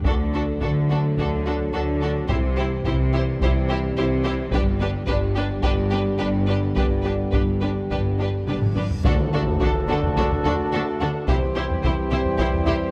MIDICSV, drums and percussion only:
0, 0, Header, 1, 3, 480
1, 0, Start_track
1, 0, Key_signature, 1, "major"
1, 0, Tempo, 560748
1, 49, Time_signature, 4, 2, 24, 8
1, 11051, End_track
2, 0, Start_track
2, 0, Title_t, "Taiko and cinematic ensemble drums"
2, 37, Note_on_c, 9, 41, 90
2, 123, Note_off_c, 9, 41, 0
2, 522, Note_on_c, 9, 41, 63
2, 608, Note_off_c, 9, 41, 0
2, 1004, Note_on_c, 9, 41, 66
2, 1089, Note_off_c, 9, 41, 0
2, 1960, Note_on_c, 9, 41, 91
2, 2046, Note_off_c, 9, 41, 0
2, 2441, Note_on_c, 9, 41, 76
2, 2526, Note_off_c, 9, 41, 0
2, 2920, Note_on_c, 9, 41, 70
2, 3005, Note_off_c, 9, 41, 0
2, 3864, Note_on_c, 9, 41, 98
2, 3950, Note_off_c, 9, 41, 0
2, 4342, Note_on_c, 9, 41, 73
2, 4427, Note_off_c, 9, 41, 0
2, 4819, Note_on_c, 9, 41, 70
2, 4904, Note_off_c, 9, 41, 0
2, 5791, Note_on_c, 9, 41, 94
2, 5877, Note_off_c, 9, 41, 0
2, 6278, Note_on_c, 9, 41, 68
2, 6363, Note_off_c, 9, 41, 0
2, 6768, Note_on_c, 9, 41, 66
2, 6853, Note_off_c, 9, 41, 0
2, 7255, Note_on_c, 9, 47, 78
2, 7341, Note_off_c, 9, 47, 0
2, 7377, Note_on_c, 9, 45, 66
2, 7462, Note_off_c, 9, 45, 0
2, 7496, Note_on_c, 9, 45, 67
2, 7582, Note_off_c, 9, 45, 0
2, 7623, Note_on_c, 9, 43, 65
2, 7709, Note_off_c, 9, 43, 0
2, 7745, Note_on_c, 9, 41, 97
2, 7830, Note_off_c, 9, 41, 0
2, 8108, Note_on_c, 9, 43, 48
2, 8194, Note_off_c, 9, 43, 0
2, 8233, Note_on_c, 9, 41, 78
2, 8319, Note_off_c, 9, 41, 0
2, 8587, Note_on_c, 9, 43, 52
2, 8673, Note_off_c, 9, 43, 0
2, 8708, Note_on_c, 9, 41, 79
2, 8793, Note_off_c, 9, 41, 0
2, 8825, Note_on_c, 9, 43, 44
2, 8910, Note_off_c, 9, 43, 0
2, 8943, Note_on_c, 9, 43, 57
2, 9028, Note_off_c, 9, 43, 0
2, 9655, Note_on_c, 9, 41, 98
2, 9740, Note_off_c, 9, 41, 0
2, 10012, Note_on_c, 9, 43, 45
2, 10098, Note_off_c, 9, 43, 0
2, 10133, Note_on_c, 9, 41, 85
2, 10219, Note_off_c, 9, 41, 0
2, 10488, Note_on_c, 9, 43, 50
2, 10573, Note_off_c, 9, 43, 0
2, 10603, Note_on_c, 9, 41, 83
2, 10689, Note_off_c, 9, 41, 0
2, 10731, Note_on_c, 9, 43, 45
2, 10817, Note_off_c, 9, 43, 0
2, 10848, Note_on_c, 9, 43, 47
2, 10934, Note_off_c, 9, 43, 0
2, 11051, End_track
3, 0, Start_track
3, 0, Title_t, "Tam-tam"
3, 7750, Note_on_c, 9, 52, 53
3, 7835, Note_off_c, 9, 52, 0
3, 11051, End_track
0, 0, End_of_file